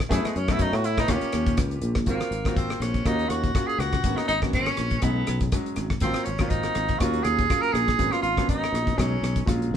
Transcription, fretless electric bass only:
0.11 0.21 F#2 loud
0.25 muted fretless electric bass stroke soft
0.36 0.56 F#2 medium
0.59 0.70 F#2 medium
0.73 1.02 A2 loud
1.08 1.19 D#2 loud
1.23 muted fretless electric bass stroke soft
1.34 1.56 D#2 medium
1.57 1.80 C#2 medium
1.82 2.05 A#1 medium
2.07 2.18 G#1 loud
2.31 2.72 G#1 medium
2.80 3.01 A#1 medium
3.05 3.26 D#2 medium
3.30 3.50 D#2 medium
3.79 3.99 C#2 medium
4.04 4.15 G#1 loud
4.29 4.69 G#1 medium
4.78 4.98 A#1 medium
5.02 5.23 B1 medium
5.28 5.48 B1 medium
5.77 5.97 G#1 medium
6.02 6.13 G#1 loud
6.27 6.67 G#1 medium
6.76 6.96 G#1 medium
7.01 7.21 D#2 medium
7.25 7.45 D#2 medium
7.74 7.94 A#1 medium
7.99 8.10 G#1 loud
8.23 8.63 G#1 medium
8.72 8.93 A#1 medium
8.98 9.18 B1 medium
9.22 9.42 B1 medium
9.47 9.70 A#1 medium
9.71 9.77 G#1 medium

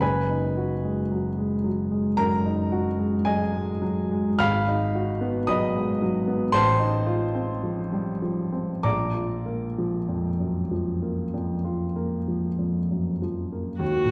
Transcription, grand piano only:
0.00 2.15 F#1 medium
0.00 2.15 F#2 soft
0.00 2.16 B4 medium
0.00 2.16 G#5 medium
0.00 2.19 B5 medium
0.30 0.74 D#4 soft
0.57 1.01 F#4 soft
0.84 1.28 G#3 soft
1.12 1.55 F#3 soft
1.38 1.65 G#3 soft
1.64 2.08 F#3 soft
1.91 2.35 G#3 soft
2.17 4.34 F#2 medium
2.17 3.20 A#4 medium
2.17 3.23 A#5 loud
2.45 2.88 D#4 soft
2.72 3.14 F#4 medium
2.98 3.41 G#3 soft
3.25 3.69 F#3 soft
3.25 4.36 G#4 medium
3.25 4.36 D#5 medium
3.25 4.39 G#5 medium
3.52 3.81 G#3 medium
3.82 4.28 F#3 medium
4.12 4.40 G#3 medium
4.39 6.49 G#1 medium
4.39 5.45 F5 loud
4.39 5.44 B5 medium
4.39 5.48 F6 loud
4.68 5.11 D#4 medium
4.95 5.38 F#4 medium
5.21 5.64 B3 medium
5.47 5.90 F#3 medium
5.47 6.49 D#5 medium
5.47 6.49 B5 medium
5.47 6.53 D#6 loud
5.75 6.01 G#3 soft
6.02 6.43 F#3 medium
6.28 6.53 B3 medium
6.52 8.79 A1 medium
6.52 8.79 C5 loud
6.52 8.80 A5 loud
6.52 8.83 C6 loud
6.79 7.23 D#4 medium
7.06 7.51 F4 medium
7.35 7.80 C4 medium
7.63 8.10 F3 soft
7.92 8.22 G3 soft
8.22 8.71 F3 soft
8.52 8.83 C4 soft
8.83 11.32 A#1 medium
8.83 13.20 D5 medium
8.83 13.20 A#5 medium
8.83 13.24 D6 medium
9.14 9.65 F4 soft
9.46 9.97 A#3 medium
9.78 10.29 F3 soft
10.09 10.60 F2 soft
10.40 10.72 F#2 soft
10.71 11.22 F3 soft
11.02 11.54 A#3 soft
11.34 11.85 F2 soft
11.65 12.16 F4 soft
11.96 12.47 A#3 soft
12.28 12.79 F3 soft
12.59 13.10 F2 soft
12.91 13.23 F#2 soft
13.22 13.70 F3 soft
13.52 13.80 A#3 soft
13.79 14.11 D#2 medium
14.05 14.11 A#2 soft

